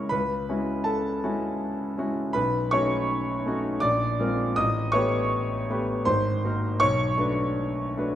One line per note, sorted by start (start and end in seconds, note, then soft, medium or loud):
0.00 0.13 G#3 soft
0.00 0.13 C#4 soft
0.00 0.13 E4 soft
0.00 0.13 A#4 soft
0.00 0.13 C#5 medium
0.00 0.13 C#6 medium
0.09 0.48 C#2 soft
0.09 0.82 B4 medium
0.09 0.85 B5 medium
0.49 1.20 G#3 soft
0.49 1.20 C#4 soft
0.49 1.20 E4 soft
0.49 1.20 F#4 soft
0.84 1.95 A4 medium
0.84 1.98 A5 medium
1.24 1.95 G#3 soft
1.24 1.95 C#4 soft
1.24 1.95 E4 soft
1.24 1.95 F#4 soft
1.98 2.32 G#3 soft
1.98 2.32 C#4 soft
1.98 2.32 E4 soft
1.98 2.33 F#4 soft
2.33 2.72 B1 medium
2.33 2.70 B4 medium
2.33 2.72 B5 medium
2.71 3.43 A3 soft
2.71 3.43 C#4 soft
2.71 3.43 D#4 soft
2.71 3.44 F#4 soft
2.71 3.79 C#5 medium
2.71 3.83 C#6 medium
3.46 3.79 A3 soft
3.46 3.80 C#4 soft
3.46 3.80 D#4 soft
3.46 3.80 F#4 soft
3.80 4.19 A#1 medium
3.80 4.53 D5 medium
3.80 4.56 D6 loud
4.19 4.53 G#3 soft
4.19 4.54 C4 soft
4.19 4.54 F4 soft
4.19 4.54 A#4 soft
4.56 4.94 A1 medium
4.56 4.93 D#5 medium
4.56 4.95 D#6 medium
4.92 5.66 A3 soft
4.92 5.66 B3 soft
4.92 5.66 G4 soft
4.92 5.66 B4 soft
4.92 6.02 C#5 medium
4.92 6.06 C#6 medium
5.70 6.03 A3 soft
5.70 6.04 B3 soft
5.70 6.04 G4 soft
5.70 6.04 B4 soft
6.05 6.43 G#1 medium
6.05 6.77 C5 medium
6.05 6.80 C6 medium
6.44 6.78 A#3 soft
6.44 6.78 D#4 soft
6.44 6.78 F#4 soft
6.44 6.79 A#4 soft
6.80 7.18 B1 medium
6.80 8.15 C#5 medium
6.80 8.15 C#6 loud
7.17 7.93 A3 soft
7.17 7.94 D4 soft
7.17 7.94 F#4 soft
7.17 7.94 B4 soft
7.97 8.15 A3 soft
7.97 8.15 D4 soft
7.97 8.15 F#4 soft
7.97 8.15 B4 soft